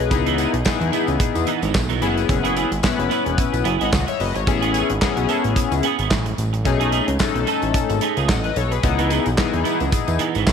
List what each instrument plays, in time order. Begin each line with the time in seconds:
Already playing: analog synth bass B1
0.00 analog polysynth G#4 B4, closed hi-hat
0.10 analog synth bass C#2, analog polysynth B3 D#4 E4 G#4, muted clean electric guitar stroke, kick, closed hi-hat, tambourine
0.26 clean electric guitar E3 B3 D#4, closed hi-hat
0.38 clean electric guitar E3 B3 D#4, closed hi-hat, tambourine
0.53 analog synth bass B1, muted clean electric guitar stroke, closed hi-hat
0.65 analog polysynth B3 D#4 E4 G#4, muted clean electric guitar stroke, kick, snare, clap, tambourine
0.81 analog synth bass E2, muted clean electric guitar stroke, closed hi-hat
0.92 clean electric guitar E3 B3 E4, closed hi-hat, tambourine
1.07 analog synth bass C#2, muted clean electric guitar stroke, closed hi-hat, tambourine
1.20 muted clean electric guitar stroke, kick, closed hi-hat, tambourine
1.35 analog synth bass E2, muted clean electric guitar stroke, closed hi-hat, tambourine
1.47 clean electric guitar E3 B3 D#4, closed hi-hat
1.62 analog synth bass G#1, clean electric guitar E3 B3 D#4, closed hi-hat, tambourine
1.74 analog synth bass B1, muted clean electric guitar stroke, kick, snare, clap, tambourine
1.89 clean electric guitar E3 B3 D#4, closed hi-hat
2.01 analog synth bass F#1, clean electric guitar B3 E4 G#4, analog polysynth B3 C#4 E4 G#4, closed hi-hat, tambourine
2.17 muted clean electric guitar stroke, closed hi-hat, tambourine
2.29 analog synth bass F#1, muted clean electric guitar stroke, kick, closed hi-hat, tambourine
2.44 clean electric guitar B3 E4 G#4, closed hi-hat
2.56 clean electric guitar B3 E4 G#4, closed hi-hat, tambourine
2.71 analog synth bass G#1, muted clean electric guitar stroke, closed hi-hat, tambourine
2.83 analog polysynth B3 C#4 E4 B4, muted clean electric guitar stroke, kick, snare, clap, tambourine
2.98 analog synth bass F#1, muted clean electric guitar stroke, closed hi-hat
3.10 clean electric guitar B3 E4 B4, closed hi-hat, tambourine
3.25 analog synth bass E1, muted clean electric guitar stroke, closed hi-hat
3.37 muted clean electric guitar stroke, kick, closed hi-hat, tambourine
3.53 analog synth bass B1, muted clean electric guitar stroke, closed hi-hat, tambourine
3.64 analog synth bass F#1, clean electric guitar B3 E4 G#4, closed hi-hat
3.80 analog synth bass G#1, clean electric guitar B3 E4 G#4, analog polysynth D#5 F#5, closed hi-hat
3.92 analog synth bass C#2, muted clean electric guitar stroke, kick, snare, clap, tambourine
4.07 analog polysynth C#5 E5, muted clean electric guitar stroke, closed hi-hat
4.20 analog synth bass F#1, analog polysynth B4 D#5, open hi-hat, tambourine
4.35 analog synth bass G#1, analog polysynth C#5, muted clean electric guitar stroke, closed hi-hat, tambourine
4.47 analog synth bass A1, analog polysynth B3 C#4 E4 G#4, muted clean electric guitar stroke, kick, closed hi-hat, tambourine
4.62 clean electric guitar B3 C#4 G#4, closed hi-hat
4.74 clean electric guitar B3 C#4 G#4, closed hi-hat, tambourine
4.89 analog synth bass G#1, muted clean electric guitar stroke, closed hi-hat
5.01 analog polysynth B3 C#4 E4 G#4, muted clean electric guitar stroke, kick, snare, clap, tambourine
5.17 analog synth bass B1, muted clean electric guitar stroke, closed hi-hat
5.29 clean electric guitar B3 C#4 A4, closed hi-hat, tambourine
5.44 analog synth bass A1, muted clean electric guitar stroke, closed hi-hat
5.56 muted clean electric guitar stroke, kick, closed hi-hat, tambourine
5.72 analog synth bass C#2, muted clean electric guitar stroke, closed hi-hat, tambourine
5.83 clean electric guitar B3 C#4 G#4, closed hi-hat
5.98 analog synth bass G#1, clean electric guitar B3 C#4 G#4, closed hi-hat
6.11 analog synth bass A1, muted clean electric guitar stroke, kick, snare, clap, tambourine
6.26 muted clean electric guitar stroke, closed hi-hat
6.38 analog synth bass A1, closed hi-hat, tambourine
6.53 muted clean electric guitar stroke, closed hi-hat
6.65 analog synth bass B1, analog polysynth A3 C#4 D#4 G#4, muted clean electric guitar stroke, kick, closed hi-hat, tambourine
6.80 clean electric guitar A3 D#4 G#4, closed hi-hat
6.92 clean electric guitar A3 D#4 G#4, closed hi-hat, tambourine
7.07 analog synth bass C#2, muted clean electric guitar stroke, closed hi-hat
7.19 analog polysynth A3 C#4 D#4 A4, muted clean electric guitar stroke, kick, snare, clap, tambourine
7.35 analog synth bass B1, muted clean electric guitar stroke, closed hi-hat
7.47 clean electric guitar A3 D#4 A4, closed hi-hat, tambourine
7.62 analog synth bass A1, muted clean electric guitar stroke, closed hi-hat, tambourine
7.74 muted clean electric guitar stroke, kick, closed hi-hat, tambourine
7.89 analog synth bass G#1, muted clean electric guitar stroke, closed hi-hat, tambourine
8.01 clean electric guitar A3 D#4 G#4, closed hi-hat
8.17 analog synth bass C#2, clean electric guitar A3 D#4 G#4, closed hi-hat, tambourine
8.29 analog synth bass A1, analog polysynth D#5 F#5, muted clean electric guitar stroke, kick, snare, clap, tambourine
8.44 analog polysynth B4 D#5, muted clean electric guitar stroke, closed hi-hat
8.56 analog synth bass B1, analog polysynth A4 C#5, closed hi-hat, tambourine
8.71 analog polysynth G#4 B4, muted clean electric guitar stroke, closed hi-hat, tambourine
8.83 analog synth bass C#2, analog polysynth B3 D#4 E4 G#4, muted clean electric guitar stroke, kick, closed hi-hat, tambourine
8.98 clean electric guitar E3 B3 D#4, closed hi-hat
9.10 clean electric guitar E3 B3 D#4, closed hi-hat, tambourine
9.25 analog synth bass B1, muted clean electric guitar stroke, closed hi-hat, tambourine
9.38 analog polysynth B3 D#4 E4 G#4, muted clean electric guitar stroke, kick, snare, clap, tambourine
9.53 analog synth bass E2, muted clean electric guitar stroke, closed hi-hat
9.64 clean electric guitar E3 B3 E4, closed hi-hat, tambourine
9.80 analog synth bass C#2, muted clean electric guitar stroke, closed hi-hat, tambourine
9.92 muted clean electric guitar stroke, kick, closed hi-hat, tambourine
10.07 analog synth bass E2, muted clean electric guitar stroke, closed hi-hat, tambourine
10.19 clean electric guitar E3 B3 D#4, closed hi-hat
10.35 analog synth bass G#1, clean electric guitar E3 B3 D#4, closed hi-hat, tambourine
10.47 analog synth bass B1, muted clean electric guitar stroke, kick, snare, clap, tambourine